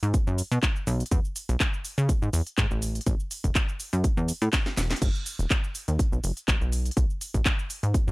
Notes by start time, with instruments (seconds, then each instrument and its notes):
0.03 analog synth bass G#2, closed hi-hat, shaker
0.14 kick, closed hi-hat, shaker
0.27 analog synth bass F#2, shaker
0.38 open hi-hat, shaker
0.52 analog synth bass B2, closed hi-hat, shaker
0.63 kick, clap, closed hi-hat, shaker
0.76 shaker
0.87 analog synth bass B1, open hi-hat, shaker
1.00 closed hi-hat, shaker
1.06 closed hi-hat
1.11 analog synth bass E2, kick, closed hi-hat, shaker
1.25 shaker
1.36 open hi-hat, shaker
1.49 analog synth bass B1, closed hi-hat, shaker
1.60 kick, clap, closed hi-hat, shaker
1.74 shaker
1.85 open hi-hat, shaker
1.98 analog synth bass C#3, closed hi-hat, shaker
2.09 kick, closed hi-hat, shaker
2.22 analog synth bass G#2, shaker
2.33 analog synth bass E2, open hi-hat, shaker
2.47 closed hi-hat, shaker
2.58 analog synth bass G#2, kick, clap, closed hi-hat, shaker
2.71 analog synth bass A1, shaker
2.82 open hi-hat, shaker
2.95 closed hi-hat, shaker
3.01 closed hi-hat
3.06 analog synth bass A1, kick, closed hi-hat, shaker
3.20 shaker
3.31 open hi-hat, shaker
3.44 analog synth bass E1, kick, closed hi-hat, shaker
3.55 kick, clap, closed hi-hat, shaker
3.69 shaker
3.80 open hi-hat, shaker
3.93 analog synth bass F#2, closed hi-hat, shaker
4.04 kick, closed hi-hat, shaker
4.17 analog synth bass E2, shaker
4.28 open hi-hat, shaker
4.42 analog synth bass A2, closed hi-hat, shaker
4.53 kick, snare, clap, closed hi-hat, shaker
4.66 snare, shaker
4.77 analog synth bass E1, snare, open hi-hat, shaker
4.91 snare, closed hi-hat, shaker
4.96 closed hi-hat
5.02 analog synth bass F#1, kick, closed hi-hat, crash, shaker
5.15 shaker
5.26 open hi-hat, shaker
5.39 analog synth bass E1, closed hi-hat, shaker
5.50 kick, clap, closed hi-hat, shaker
5.64 shaker
5.75 open hi-hat, shaker
5.88 analog synth bass D#2, closed hi-hat, shaker
5.99 kick, closed hi-hat, shaker
6.12 analog synth bass B1, shaker
6.24 analog synth bass F#1, open hi-hat, shaker
6.37 closed hi-hat, shaker
6.48 analog synth bass A1, kick, clap, closed hi-hat, shaker
6.61 analog synth bass B1, shaker
6.72 open hi-hat, shaker
6.86 closed hi-hat, shaker
6.91 closed hi-hat
6.97 analog synth bass B1, kick, closed hi-hat, shaker
7.10 shaker
7.21 open hi-hat, shaker
7.34 analog synth bass A1, kick, closed hi-hat, shaker
7.46 kick, clap, closed hi-hat, shaker
7.59 shaker
7.70 open hi-hat, shaker
7.83 analog synth bass G#2, closed hi-hat, shaker
7.94 kick, closed hi-hat, shaker
8.08 analog synth bass F#2, shaker